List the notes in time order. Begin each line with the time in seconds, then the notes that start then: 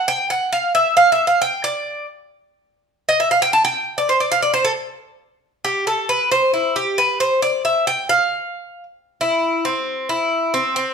0.08 G5
0.30 F#5
0.53 F5
0.75 E5
0.97 F5
1.12 E5
1.27 F5
1.42 G5
1.64 D5
3.09 D#5
3.20 E5
3.31 F5
3.42 G5
3.53 A5
3.65 G5
3.98 D5
4.09 C5
4.20 D5
4.32 F5
4.42 D5
4.54 C5
4.65 A4
5.65 G4
5.87 A4
6.09 B4
6.32 C5
6.54 E4
6.76 G4
6.98 B4
7.20 C5
7.42 D5
7.65 E5
7.87 G5
8.09 F5
9.21 E4
9.65 C4
10.09 E4
10.54 C4
10.76 C4